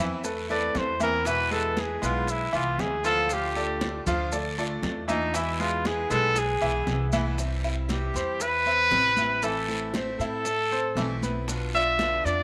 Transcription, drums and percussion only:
0.24 high bongo medium
0.24 high conga soft
0.24 long guiro medium
0.24 maracas medium
0.50 high conga soft
0.50 maracas soft
0.75 high bongo soft
0.75 low bongo medium
0.75 high conga soft
0.75 short guiro medium
0.75 maracas soft
1.00 high bongo soft
1.00 high conga medium
1.00 short guiro medium
1.00 maracas medium
1.25 high bongo medium
1.25 high conga soft
1.25 long guiro medium
1.25 maracas medium
1.51 high bongo soft
1.51 high conga soft
1.51 maracas soft
1.77 high bongo medium
1.77 high conga loud
1.77 short guiro medium
1.77 maracas soft
2.02 high bongo soft
2.02 high conga soft
2.02 short guiro medium
2.02 maracas medium
2.27 high bongo medium
2.27 high conga soft
2.27 long guiro medium
2.27 maracas medium
2.54 high conga soft
2.54 maracas soft
2.78 high bongo soft
2.78 low bongo medium
2.78 high conga soft
2.78 short guiro medium
2.78 maracas soft
3.04 high bongo soft
3.04 short guiro medium
3.04 maracas medium
3.29 high bongo medium
3.29 high conga soft
3.29 long guiro medium
3.29 maracas medium
3.56 high bongo soft
3.56 high conga soft
3.56 maracas soft
3.81 high bongo medium
3.81 high conga loud
3.81 short guiro medium
3.81 maracas soft
4.07 high bongo soft
4.07 high conga soft
4.07 low conga medium
4.07 short guiro medium
4.07 maracas medium
4.32 high bongo medium
4.32 high conga soft
4.32 long guiro medium
4.32 maracas medium
4.58 high conga soft
4.58 maracas soft
4.83 high bongo soft
4.83 low bongo medium
4.83 high conga soft
4.83 short guiro medium
4.83 maracas soft
5.09 high bongo soft
5.09 high conga medium
5.09 short guiro medium
5.09 maracas medium
5.34 high bongo medium
5.34 high conga soft
5.34 long guiro medium
5.34 maracas medium
5.59 high bongo soft
5.59 high conga soft
5.59 maracas soft
5.85 high bongo medium
5.85 high conga loud
5.85 short guiro medium
5.85 maracas soft
6.10 high bongo soft
6.10 high conga soft
6.10 short guiro medium
6.10 maracas medium
6.36 high bongo medium
6.36 high conga soft
6.36 long guiro medium
6.36 maracas medium
6.61 high conga soft
6.61 maracas soft
6.87 high bongo soft
6.87 low bongo medium
6.87 high conga soft
6.87 short guiro medium
6.87 maracas soft
7.12 high bongo soft
7.12 high conga loud
7.12 short guiro medium
7.12 maracas medium
7.38 high bongo medium
7.38 high conga soft
7.38 long guiro medium
7.38 maracas medium
7.63 high bongo soft
7.63 high conga soft
7.63 maracas soft
7.89 high bongo medium
7.89 high conga loud
7.89 short guiro medium
7.89 maracas soft
8.14 high bongo soft
8.14 high conga soft
8.14 short guiro medium
8.14 maracas medium
8.40 high bongo medium
8.40 high conga soft
8.40 long guiro medium
8.40 maracas medium
8.66 high conga soft
8.66 maracas soft
8.91 high bongo soft
8.91 low bongo medium
8.91 high conga soft
8.91 short guiro medium
8.91 maracas soft
9.17 high bongo soft
9.17 high conga medium
9.17 short guiro medium
9.17 maracas medium
9.43 high bongo medium
9.43 high conga soft
9.43 long guiro medium
9.43 maracas medium
9.68 high bongo soft
9.68 high conga soft
9.68 maracas soft
9.94 high bongo medium
9.94 high conga loud
9.94 short guiro medium
9.94 maracas soft
10.19 high bongo soft
10.19 high conga soft
10.19 short guiro medium
10.19 maracas medium
10.45 high bongo medium
10.45 high conga soft
10.45 long guiro medium
10.45 maracas medium
10.71 high conga soft
10.71 maracas soft
10.97 high bongo soft
10.97 low bongo medium
10.97 high conga soft
10.97 short guiro medium
10.97 maracas soft
11.23 high bongo soft
11.23 high conga medium
11.23 short guiro medium
11.23 maracas medium
11.48 high bongo medium
11.48 high conga soft
11.48 long guiro medium
11.48 maracas medium
11.74 high bongo soft
11.74 high conga soft
11.74 maracas soft
11.99 high bongo medium
11.99 high conga medium
11.99 short guiro medium
11.99 maracas soft
12.24 high bongo soft
12.24 high conga soft
12.24 short guiro medium
12.24 maracas medium

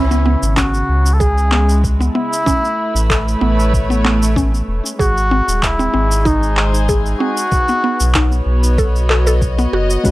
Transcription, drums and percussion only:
0.11 shaker soft
0.43 shaker medium
0.57 kick loud
0.57 clap medium
0.57 shaker medium
0.74 shaker soft
1.06 shaker medium
1.21 kick medium
1.21 shaker medium
1.38 shaker soft
1.52 clap medium
1.69 shaker medium
1.84 kick loud
1.84 shaker soft
2.01 shaker soft
2.33 shaker medium
2.47 kick medium
2.47 shaker medium
2.65 shaker soft
2.96 shaker medium
3.10 kick loud
3.10 clap medium
3.10 shaker medium
3.28 shaker soft
3.60 shaker medium
3.73 kick loud
3.73 shaker medium
3.91 shaker soft
4.05 clap medium
4.23 shaker medium
4.37 kick loud
4.37 shaker soft
4.54 shaker soft
4.86 shaker medium
5.00 kick loud
5.00 shaker medium
5.17 shaker soft
5.49 shaker medium
5.63 kick loud
5.63 clap medium
5.63 shaker medium
5.80 shaker soft
6.11 shaker medium
6.26 kick loud
6.26 shaker medium
6.43 shaker soft
6.57 clap medium
6.74 shaker medium
6.89 kick loud
6.89 shaker medium
7.06 shaker soft
7.37 shaker medium
7.52 kick loud
7.52 shaker medium
7.68 shaker soft
8.00 shaker medium
8.14 kick loud
8.14 clap medium
8.14 shaker medium
8.32 shaker soft
8.63 shaker medium
8.78 kick loud
8.78 shaker medium
8.96 shaker soft
9.10 clap medium
9.27 shaker medium
9.42 kick loud
9.42 shaker medium
9.59 shaker soft
9.90 shaker medium
10.05 kick loud
10.05 open hi-hat soft
10.05 shaker soft

